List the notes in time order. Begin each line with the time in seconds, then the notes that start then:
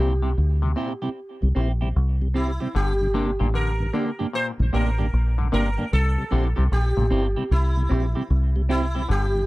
Already playing: C2 A#2 C4 E4 G4
0.22 C3 G3 C4 E4 G4
0.38 D2
0.62 C3 G3
0.76 A#2 C4 E4 G4
1.02 C3 G3 C4 E4 G4
1.42 C2 C3 G3
1.55 A#1 C4 E4 G4
1.81 C3 G3 C4 E4 G4
1.96 C2
2.22 C3 G3
2.34 C4 E4 G4
2.60 C3 G3 C4 E4 G4
2.75 G1 D3 G4
3.01 G2 D3
3.14 C3 A#3 D4 G4
3.39 A1 G2 A#2 D3 A#3 D4 G4
3.54 D3 A#4
3.80 G2 D3
3.93 D3 A#3 D4 G4
4.19 G2 D3 A#3 D4 G4
4.33 A#2 C5
4.59 A#1 G2 D3
4.73 A1 C3 A#3 D4 G4 A#4
4.99 G2 D3 A#3 D4 G4
5.13 A#1
5.38 G2 D3
5.52 G1 C3 A#3 D4 G4 A#4
5.78 G2 D3 A#3 D4 G4
5.93 C2 A4
6.18 C3 G3
6.31 A#1 D3 C4 E4 G4
6.56 C2 C3 G3 C4 E4 G4
6.72 A#1 G4
6.97 A1 A#2 C3 G3
7.10 G1 G2 C4 E4 G4
7.36 C3 G3 C4 E4 G4
7.51 C2 E4
7.76 C3 G3
7.89 A#1 C4 E4 G4
8.15 C3 G3 C4 E4 G4
8.30 C2
8.56 C3 G3
8.69 C4 E4 G4
8.95 C3 G3 C4 E4 G4
9.09 G1 D3 G4
9.35 G2 D3